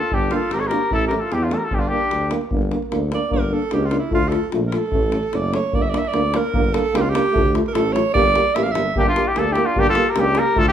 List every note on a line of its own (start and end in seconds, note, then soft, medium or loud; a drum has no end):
0.00 0.14 F4 medium
0.00 0.16 A4 medium
0.12 0.33 G1 loud
0.12 0.30 D4 loud
0.12 0.33 G4 loud
0.12 davul low medium
0.31 0.39 A#3 medium
0.31 0.39 D4 medium
0.31 0.54 F4 medium
0.31 0.55 A4 medium
0.31 davul high medium
0.51 0.73 G#1 medium
0.51 0.61 G4 medium
0.51 0.61 A#4 medium
0.51 davul high medium
0.59 0.68 A4 medium
0.59 0.69 C#5 medium
0.67 0.92 G4 medium
0.67 0.92 A#4 medium
0.71 0.79 A#3 medium
0.71 0.80 D4 medium
0.71 davul high medium
0.91 1.13 A1 loud
0.91 1.04 E4 medium
0.91 1.05 A4 medium
0.91 davul low medium
1.07 1.19 A3 medium
1.07 1.19 C#4 medium
1.07 1.18 G4 medium
1.07 1.16 A#4 medium
1.07 davul high medium
1.16 1.23 G4 soft
1.16 1.34 A4 medium
1.16 1.21 A#4 medium
1.22 1.37 F4 medium
1.22 davul high soft
1.32 1.54 E2 loud
1.32 1.47 E4 medium
1.32 1.44 G4 medium
1.32 davul high medium
1.43 1.56 D4 medium
1.43 1.55 F4 medium
1.50 1.59 A3 medium
1.50 1.59 C#4 medium
1.50 1.59 A4 medium
1.50 davul high medium
1.54 1.61 F4 medium
1.54 1.66 A#4 medium
1.59 1.69 G4 medium
1.65 1.78 F4 medium
1.65 1.76 A4 medium
1.71 1.93 G1 loud
1.71 1.81 G4 medium
1.71 davul low medium
1.77 1.80 D4 medium
1.77 1.90 D4 medium
1.77 1.89 F4 medium
1.82 davul high soft
1.88 1.99 A#3 medium
1.88 2.34 D4 medium
1.88 2.00 D4 medium
1.88 2.33 G4 loud
2.01 davul high soft
2.11 2.34 D2 medium
2.11 davul high medium
2.31 2.39 A#3 medium
2.31 2.40 D4 medium
2.31 davul high medium
2.41 davul high soft
2.51 2.74 G1 loud
2.51 2.60 A#3 medium
2.51 2.59 D4 medium
2.51 davul low medium
2.62 davul high soft
2.71 2.79 A#3 medium
2.71 2.80 D4 medium
2.71 davul high medium
2.82 davul high soft
2.91 3.14 D2 loud
2.91 2.99 A#3 medium
2.91 3.00 D4 medium
2.91 davul high medium
3.12 3.20 A#3 medium
3.12 3.20 D4 medium
3.12 3.32 D5 medium
3.12 davul high medium
3.30 3.54 G1 loud
3.30 3.38 A#3 medium
3.30 3.39 D4 medium
3.30 3.55 A#4 medium
3.30 davul low medium
3.43 davul high soft
3.51 3.59 A#3 medium
3.51 3.60 D4 medium
3.51 3.75 A4 medium
3.62 davul high soft
3.71 3.95 C#2 loud
3.71 3.80 A#3 medium
3.71 3.80 D4 medium
3.71 3.87 G4 medium
3.71 davul high medium
3.86 3.98 F4 medium
3.91 3.99 A#3 medium
3.91 3.99 D4 medium
3.91 davul high medium
3.99 4.12 E4 medium
4.10 4.35 D2 loud
4.10 4.19 A3 medium
4.10 4.20 F4 medium
4.10 davul low medium
4.14 4.30 F4 loud
4.23 davul high soft
4.28 4.39 A3 medium
4.28 4.39 F4 medium
4.28 4.48 A4 medium
4.28 davul high medium
4.52 4.75 A#1 loud
4.52 4.61 A3 medium
4.52 4.60 F4 medium
4.52 davul high medium
4.67 4.78 A#4 medium
4.72 4.80 A3 medium
4.72 4.81 F4 medium
4.72 davul high medium
4.77 5.37 A4 medium
4.92 5.16 A1 loud
4.92 5.00 A3 medium
4.92 5.01 C#4 medium
4.92 davul low medium
5.03 davul high soft
5.11 5.20 A3 medium
5.11 5.21 C#4 medium
5.11 davul high medium
5.23 davul high soft
5.33 5.55 F#1 loud
5.33 5.41 A3 medium
5.33 5.41 C#4 medium
5.33 5.55 D5 medium
5.33 davul high medium
5.53 5.61 A3 medium
5.53 5.61 C#4 medium
5.53 5.76 C#5 medium
5.53 davul high medium
5.63 davul high soft
5.73 5.96 G1 loud
5.73 5.81 A#3 medium
5.73 5.82 D4 medium
5.73 5.83 D5 medium
5.73 davul low medium
5.82 5.91 E5 medium
5.82 davul high soft
5.90 6.01 A#3 medium
5.90 6.01 D4 medium
5.90 5.99 D5 medium
5.94 6.09 E5 medium
5.94 davul high medium
6.05 6.38 D5 medium
6.05 davul high soft
6.13 6.36 D2 loud
6.13 6.22 A#3 medium
6.13 6.22 D4 medium
6.13 davul high medium
6.34 6.42 A#3 medium
6.34 6.42 D4 medium
6.34 6.76 A#4 medium
6.34 davul high medium
6.53 6.76 G1 loud
6.53 6.61 A#3 medium
6.53 6.62 D4 medium
6.53 davul low loud
6.64 davul high soft
6.73 6.81 A#3 medium
6.73 6.82 D4 medium
6.73 6.98 A4 loud
6.73 davul high medium
6.86 davul high soft
6.93 7.16 C#2 loud
6.93 7.01 A#3 medium
6.93 7.02 D4 medium
6.93 7.03 G4 medium
6.93 davul high medium
7.02 7.11 F4 medium
7.10 7.22 A#3 medium
7.10 7.55 G4 loud
7.14 7.22 D4 medium
7.14 davul high medium
7.32 7.57 D2 loud
7.32 7.41 A3 medium
7.32 7.43 F4 medium
7.32 davul low loud
7.46 davul high soft
7.54 7.62 A3 medium
7.54 7.62 F4 medium
7.54 davul high medium
7.66 7.75 A#4 medium
7.66 davul high soft
7.74 7.97 A1 loud
7.74 7.82 A3 medium
7.74 7.83 F4 medium
7.74 7.94 A4 loud
7.74 davul high medium
7.93 8.02 A3 medium
7.93 8.03 F4 medium
7.93 8.13 C#5 loud
7.93 davul high medium
8.14 8.37 G1 loud
8.14 8.22 A#3 medium
8.14 8.23 G4 medium
8.14 8.57 D5 loud
8.14 davul low loud
8.26 davul high soft
8.35 8.43 A#3 medium
8.35 8.44 G4 medium
8.35 davul high medium
8.47 davul high soft
8.55 8.74 A1 medium
8.55 8.63 A#3 medium
8.55 8.64 G4 medium
8.55 8.64 E5 medium
8.55 davul high medium
8.63 8.73 F5 medium
8.71 8.93 G1 medium
8.71 8.83 A#3 medium
8.71 8.96 E5 loud
8.75 8.83 G4 medium
8.75 davul high medium
8.95 9.17 G1 medium
8.95 9.04 A#3 medium
8.95 9.04 G4 medium
8.95 9.07 G4 loud
8.95 davul low medium
9.00 9.07 D4 medium
9.06 9.29 D4 medium
9.06 9.30 F4 medium
9.06 davul high soft
9.15 9.23 A#3 medium
9.15 9.24 G4 medium
9.15 davul high medium
9.28 9.40 E4 medium
9.28 9.40 G4 medium
9.35 9.57 D2 medium
9.35 9.44 A#3 medium
9.35 9.54 D4 medium
9.35 9.44 G4 medium
9.35 9.54 A4 loud
9.35 davul high medium
9.52 9.64 A#3 medium
9.52 9.66 E4 medium
9.52 9.67 G4 medium
9.52 9.63 G4 medium
9.52 davul high medium
9.64 9.79 D4 medium
9.64 9.81 F4 loud
9.75 9.98 G1 loud
9.75 9.85 A#3 medium
9.75 9.88 D4 loud
9.75 9.84 G4 medium
9.75 davul low medium
9.79 9.88 G4 loud
9.86 10.11 F4 medium
9.86 10.12 A4 loud
9.86 davul high soft
9.95 10.04 A#3 medium
9.95 10.05 G4 medium
9.95 davul high medium
10.09 10.22 G4 medium
10.09 10.21 A#4 medium
10.16 10.38 C#2 loud
10.16 10.24 A#3 medium
10.16 10.24 G4 medium
10.16 davul high medium
10.20 10.41 D4 medium
10.20 10.40 G4 loud
10.35 10.44 A#3 medium
10.35 10.44 G4 medium
10.35 10.60 A#4 loud
10.35 davul high medium
10.40 10.61 G4 medium
10.55 10.72 D2 loud
10.55 10.63 A3 medium
10.55 10.64 F4 medium
10.55 10.68 A4 loud
10.55 davul low loud
10.59 10.68 F4 medium
10.68 10.72 G4 loud
10.68 davul high soft